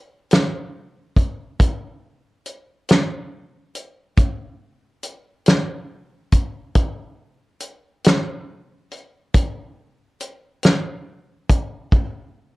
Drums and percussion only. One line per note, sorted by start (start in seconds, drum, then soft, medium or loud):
0.31 snare loud
0.31 closed hi-hat medium
1.16 kick medium
1.16 closed hi-hat medium
1.60 kick medium
1.60 closed hi-hat medium
2.46 closed hi-hat soft
2.89 snare loud
2.89 closed hi-hat medium
3.75 closed hi-hat medium
4.17 kick loud
4.17 closed hi-hat medium
5.03 closed hi-hat medium
5.46 snare medium
5.46 closed hi-hat medium
6.32 kick medium
6.32 closed hi-hat medium
6.75 kick medium
6.75 closed hi-hat medium
7.60 closed hi-hat medium
8.05 snare loud
8.05 closed hi-hat medium
8.91 closed hi-hat medium
9.34 kick medium
9.34 closed hi-hat medium
10.21 closed hi-hat medium
10.63 snare medium
10.63 closed hi-hat medium
11.49 kick medium
11.49 closed hi-hat medium
11.92 kick medium
11.92 closed hi-hat medium